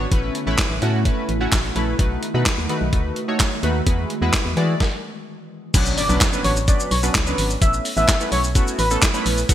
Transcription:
Already playing: ambient pad B3
0.12 fm bass A1, ambient pad C#3 A3 E4, synth keys A3 C#4 E4 B4, kick, closed hi-hat
0.35 closed hi-hat
0.47 fm bass A1, synth keys A3 C#4 E4 B4
0.58 kick, snare, clap, closed hi-hat
0.70 fm bass A1
0.82 fm bass A2, synth keys A3 C#4 E4 F#4, closed hi-hat
1.05 synth keys A3 C#4 E4 B4, kick, closed hi-hat
1.29 fm bass A1, closed hi-hat
1.40 synth keys A3 C#4 E4 F#4
1.52 fm bass A1, kick, snare, clap, closed hi-hat
1.75 fm bass A#1, synth keys A3 C#4 E4 B4, closed hi-hat
1.99 fm bass B1, ambient pad D#3 A3 F#4, synth keys A3 D#4 F#4 B4, kick, closed hi-hat
2.23 closed hi-hat
2.34 fm bass B2, synth keys A3 D#4 F#4 B4
2.46 kick, snare, clap, closed hi-hat
2.58 fm bass D#2
2.69 synth keys A3 D#4 F#4 B4, closed hi-hat
2.81 fm bass B1
2.93 fm bass D2, synth keys A3 D#4 F#4 B4, kick, closed hi-hat
3.16 closed hi-hat
3.28 synth keys A3 D#4 F#4 C#5
3.40 kick, snare, clap, closed hi-hat
3.63 fm bass D#2, synth keys A3 D#4 F#4 B4, closed hi-hat
3.87 fm bass E2, ambient pad E3 G#3, synth keys G#3 E4 F#4 B4, kick, closed hi-hat
4.10 closed hi-hat
4.22 fm bass E2, synth keys G#3 E4 F#4 B4
4.33 kick, snare, clap, closed hi-hat
4.45 fm bass E2
4.57 fm bass E3, synth keys G#3 E4 F#4 D5, closed hi-hat
4.80 kick, snare
5.74 fm bass B1, synth keys F#3 B3 C#4 D4 B4, kick, closed hi-hat, crash, impact, shaker
5.86 shaker
5.98 analog synth lead D5, open hi-hat, shaker
6.09 fm bass B1, synth keys F#3 B3 C#4 D4 B4, shaker
6.21 kick, snare, clap, closed hi-hat, shaker
6.33 synth keys F#3 B3 C#4 D4 B4, shaker
6.44 fm bass A1, analog synth lead C#5, open hi-hat, shaker
6.56 shaker
6.68 synth keys F#3 B3 C#4 D4 B4, analog synth lead D5, kick, closed hi-hat, shaker
6.80 shaker
6.91 fm bass B1, analog synth lead C#5, open hi-hat, shaker
7.03 synth keys F#3 B3 C#4 D4 B4, shaker
7.15 fm bass C#2, kick, snare, clap, closed hi-hat, shaker
7.26 synth keys F#3 B3 C#4 D4 B4, shaker
7.38 fm bass G#1, open hi-hat, shaker
7.50 shaker
7.61 fm bass A1, synth keys A3 B3 C#4 E4 B4, analog synth lead E5, kick, closed hi-hat, shaker
7.73 shaker
7.85 open hi-hat, shaker
7.97 fm bass A1, synth keys A3 B3 C#4 E4 B4, analog synth lead E5, shaker
8.08 kick, snare, clap, closed hi-hat, shaker
8.20 synth keys A3 B3 C#4 E4 B4, shaker
8.32 fm bass B1, analog synth lead C#5, open hi-hat, shaker
8.44 shaker
8.55 synth keys A3 B3 C#4 E4 F#4, kick, closed hi-hat, shaker
8.67 shaker
8.79 fm bass A1, analog synth lead B4, open hi-hat, shaker
8.90 synth keys A3 B3 C#4 E4 A4, shaker
9.02 kick, snare, clap, closed hi-hat, shaker
9.14 synth keys A3 B3 C#4 E4 B4, shaker
9.26 fm bass A#1, open hi-hat, shaker
9.38 shaker
9.49 fm bass B1, synth keys A3 B3 D#4 F#4 B4, kick, closed hi-hat, shaker

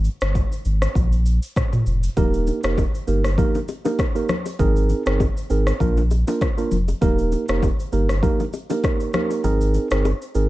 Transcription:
0.04 shaker
0.21 sub bass G1, cross-stick, shaker
0.35 kick, shaker
0.52 shaker
0.65 sub bass G#1, shaker
0.82 cross-stick, shaker
0.95 sub bass A#1, kick, shaker
1.12 shaker
1.26 shaker
1.43 shaker
1.56 kick, cross-stick, mid tom, shaker
1.73 mid tom, shaker
1.86 sub bass F1, shaker
2.03 shaker
2.17 sub bass D#1, tine electric piano A#3 D#4 G4 A#4, kick, low conga, shaker
2.34 shaker
2.47 low bongo, shaker
2.64 sub bass F1, tine electric piano A#3 D#4 G4 A#4, cross-stick, shaker
2.78 kick, high bongo, shaker
2.95 shaker
3.07 sub bass G1, tine electric piano A#3 D#4 G4 A#4, shaker
3.24 cross-stick, shaker
3.38 tine electric piano A#3 D#4 G4 A#4, kick, low conga, shaker
3.55 low bongo, shaker
3.68 high bongo, shaker
3.85 tine electric piano A#3 D#4 G4 A#4, low bongo, shaker
3.99 kick, cross-stick, high bongo, shaker
4.15 tine electric piano A#3 D#4 G4 A#4, shaker
4.29 cross-stick, low conga, shaker
4.46 high bongo, shaker
4.59 sub bass G#1, tine electric piano C4 D#4 G#4 A#4, kick, low conga, shaker
4.76 shaker
4.89 low bongo, shaker
5.06 sub bass G1, tine electric piano C4 D#4 G#4 A#4, cross-stick, shaker
5.20 kick, high bongo, shaker
5.37 shaker
5.50 sub bass G#1, tine electric piano C4 D#4 G#4 A#4, shaker
5.67 cross-stick, shaker
5.80 sub bass A#1, tine electric piano A#3 D4 F4 A#4, kick, low conga, shaker
5.97 low bongo, shaker
6.11 high bongo, shaker
6.27 tine electric piano A#3 D4 F4 A#4, low bongo, shaker
6.41 kick, cross-stick, high bongo, shaker
6.58 tine electric piano A#3 D4 F4 A#4, shaker
6.71 sub bass F1, low conga, shaker
6.88 high bongo, shaker
7.01 sub bass D#1, tine electric piano A#3 D#4 G4 A#4, kick, low conga, shaker
7.19 shaker
7.32 low bongo, shaker
7.48 sub bass F1, tine electric piano A#3 D#4 G4 A#4, cross-stick, shaker
7.63 kick, high bongo, shaker
7.80 shaker
7.92 sub bass G1, tine electric piano A#3 D#4 G4 A#4, shaker
8.09 cross-stick, shaker
8.23 tine electric piano A#3 D#4 G4 A#4, kick, low conga, shaker
8.40 low bongo, shaker
8.53 high bongo, shaker
8.70 tine electric piano A#3 D#4 G4 A#4, low bongo, shaker
8.84 kick, cross-stick, high bongo, shaker
9.00 shaker
9.14 tine electric piano A#3 D#4 G4 A#4, cross-stick, low conga, shaker
9.31 high bongo, shaker
9.44 sub bass G#1, tine electric piano C4 D#4 G#4 A#4, low conga, shaker
9.61 shaker
9.74 low bongo, shaker
9.91 sub bass G1, tine electric piano C4 D#4 G#4 A#4, cross-stick, shaker
10.05 high bongo, shaker
10.22 shaker
10.35 sub bass G#1, tine electric piano C4 D#4 G#4 A#4, shaker

